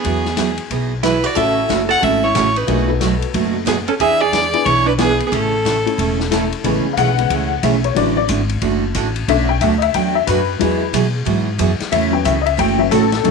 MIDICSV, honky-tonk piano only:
0, 0, Header, 1, 2, 480
1, 0, Start_track
1, 0, Key_signature, 3, "major"
1, 0, Tempo, 329852
1, 65, Time_signature, 4, 2, 24, 8
1, 19366, End_track
2, 0, Start_track
2, 0, Title_t, "Honky-tonk piano"
2, 0, Program_c, 0, 3
2, 1975, Note_on_c, 0, 66, 63
2, 1976, Note_on_c, 0, 61, 69
2, 1979, Note_on_c, 0, 69, 75
2, 1980, Note_on_c, 0, 64, 56
2, 3312, Note_off_c, 0, 61, 0
2, 3312, Note_off_c, 0, 66, 0
2, 3314, Note_off_c, 0, 64, 0
2, 3314, Note_off_c, 0, 69, 0
2, 3887, Note_on_c, 0, 58, 62
2, 3892, Note_on_c, 0, 65, 63
2, 3896, Note_on_c, 0, 62, 63
2, 3898, Note_on_c, 0, 68, 68
2, 4167, Note_off_c, 0, 58, 0
2, 4170, Note_off_c, 0, 65, 0
2, 4172, Note_off_c, 0, 62, 0
2, 4173, Note_off_c, 0, 68, 0
2, 4186, Note_on_c, 0, 63, 54
2, 4191, Note_on_c, 0, 59, 64
2, 4193, Note_on_c, 0, 66, 51
2, 4200, Note_on_c, 0, 69, 65
2, 5226, Note_off_c, 0, 63, 0
2, 5228, Note_off_c, 0, 59, 0
2, 5229, Note_off_c, 0, 66, 0
2, 5233, Note_off_c, 0, 69, 0
2, 6595, Note_on_c, 0, 59, 69
2, 6599, Note_on_c, 0, 62, 61
2, 6600, Note_on_c, 0, 68, 81
2, 6604, Note_on_c, 0, 64, 68
2, 6759, Note_off_c, 0, 59, 0
2, 6761, Note_off_c, 0, 62, 0
2, 6761, Note_off_c, 0, 68, 0
2, 6763, Note_off_c, 0, 64, 0
2, 7249, Note_on_c, 0, 59, 62
2, 7253, Note_on_c, 0, 64, 65
2, 7253, Note_on_c, 0, 71, 72
2, 7255, Note_on_c, 0, 62, 58
2, 7528, Note_off_c, 0, 59, 0
2, 7530, Note_off_c, 0, 71, 0
2, 7531, Note_off_c, 0, 62, 0
2, 7531, Note_off_c, 0, 64, 0
2, 8521, Note_on_c, 0, 57, 67
2, 8525, Note_on_c, 0, 61, 58
2, 8529, Note_on_c, 0, 64, 61
2, 8532, Note_on_c, 0, 69, 70
2, 8682, Note_off_c, 0, 57, 0
2, 8684, Note_off_c, 0, 61, 0
2, 8687, Note_off_c, 0, 64, 0
2, 8687, Note_off_c, 0, 69, 0
2, 9179, Note_on_c, 0, 64, 59
2, 9186, Note_on_c, 0, 57, 63
2, 9186, Note_on_c, 0, 61, 61
2, 9187, Note_on_c, 0, 69, 73
2, 9454, Note_off_c, 0, 64, 0
2, 9457, Note_off_c, 0, 57, 0
2, 9457, Note_off_c, 0, 61, 0
2, 9458, Note_off_c, 0, 69, 0
2, 9659, Note_on_c, 0, 49, 55
2, 9663, Note_on_c, 0, 56, 56
2, 9674, Note_on_c, 0, 59, 59
2, 10086, Note_on_c, 0, 77, 62
2, 10126, Note_off_c, 0, 77, 0
2, 10153, Note_on_c, 0, 78, 101
2, 10405, Note_off_c, 0, 49, 0
2, 10407, Note_off_c, 0, 56, 0
2, 10413, Note_off_c, 0, 59, 0
2, 10443, Note_on_c, 0, 49, 49
2, 10445, Note_on_c, 0, 56, 44
2, 10450, Note_on_c, 0, 59, 51
2, 10604, Note_off_c, 0, 49, 0
2, 10604, Note_off_c, 0, 56, 0
2, 10608, Note_off_c, 0, 59, 0
2, 11080, Note_off_c, 0, 78, 0
2, 11111, Note_on_c, 0, 76, 72
2, 11402, Note_off_c, 0, 76, 0
2, 11418, Note_on_c, 0, 73, 71
2, 11564, Note_on_c, 0, 52, 51
2, 11578, Note_on_c, 0, 54, 52
2, 11584, Note_off_c, 0, 73, 0
2, 11584, Note_on_c, 0, 62, 59
2, 11591, Note_on_c, 0, 74, 81
2, 11865, Note_off_c, 0, 74, 0
2, 11887, Note_on_c, 0, 74, 94
2, 11929, Note_off_c, 0, 52, 0
2, 11936, Note_off_c, 0, 54, 0
2, 11939, Note_off_c, 0, 62, 0
2, 12059, Note_off_c, 0, 74, 0
2, 13507, Note_on_c, 0, 50, 62
2, 13513, Note_on_c, 0, 57, 52
2, 13524, Note_on_c, 0, 76, 96
2, 13525, Note_on_c, 0, 61, 68
2, 13809, Note_off_c, 0, 76, 0
2, 13810, Note_on_c, 0, 79, 82
2, 13862, Note_off_c, 0, 50, 0
2, 13865, Note_off_c, 0, 57, 0
2, 13871, Note_off_c, 0, 61, 0
2, 13981, Note_off_c, 0, 79, 0
2, 13990, Note_on_c, 0, 76, 83
2, 14236, Note_on_c, 0, 75, 60
2, 14263, Note_off_c, 0, 75, 0
2, 14274, Note_off_c, 0, 76, 0
2, 14296, Note_on_c, 0, 76, 97
2, 14464, Note_off_c, 0, 76, 0
2, 14474, Note_on_c, 0, 79, 77
2, 14764, Note_off_c, 0, 79, 0
2, 14775, Note_on_c, 0, 76, 87
2, 14944, Note_off_c, 0, 76, 0
2, 14944, Note_on_c, 0, 71, 90
2, 15414, Note_on_c, 0, 54, 58
2, 15423, Note_on_c, 0, 56, 55
2, 15427, Note_on_c, 0, 64, 60
2, 15776, Note_off_c, 0, 54, 0
2, 15781, Note_off_c, 0, 56, 0
2, 15782, Note_off_c, 0, 64, 0
2, 15877, Note_off_c, 0, 71, 0
2, 17346, Note_on_c, 0, 76, 94
2, 17628, Note_on_c, 0, 54, 53
2, 17634, Note_on_c, 0, 59, 50
2, 17642, Note_off_c, 0, 76, 0
2, 17644, Note_on_c, 0, 61, 58
2, 17653, Note_on_c, 0, 79, 73
2, 17824, Note_off_c, 0, 79, 0
2, 17832, Note_on_c, 0, 76, 81
2, 17923, Note_off_c, 0, 54, 0
2, 17926, Note_off_c, 0, 59, 0
2, 17931, Note_off_c, 0, 61, 0
2, 18066, Note_on_c, 0, 75, 66
2, 18096, Note_off_c, 0, 75, 0
2, 18110, Note_off_c, 0, 76, 0
2, 18131, Note_on_c, 0, 76, 97
2, 18303, Note_off_c, 0, 76, 0
2, 18320, Note_on_c, 0, 79, 84
2, 18604, Note_on_c, 0, 54, 50
2, 18608, Note_on_c, 0, 59, 47
2, 18609, Note_off_c, 0, 79, 0
2, 18612, Note_on_c, 0, 61, 56
2, 18616, Note_on_c, 0, 76, 80
2, 18767, Note_off_c, 0, 54, 0
2, 18769, Note_off_c, 0, 59, 0
2, 18772, Note_off_c, 0, 61, 0
2, 18786, Note_off_c, 0, 76, 0
2, 18791, Note_on_c, 0, 69, 104
2, 19263, Note_on_c, 0, 51, 62
2, 19271, Note_on_c, 0, 57, 55
2, 19282, Note_on_c, 0, 61, 69
2, 19366, Note_off_c, 0, 51, 0
2, 19366, Note_off_c, 0, 57, 0
2, 19366, Note_off_c, 0, 61, 0
2, 19366, Note_off_c, 0, 69, 0
2, 19366, End_track
0, 0, End_of_file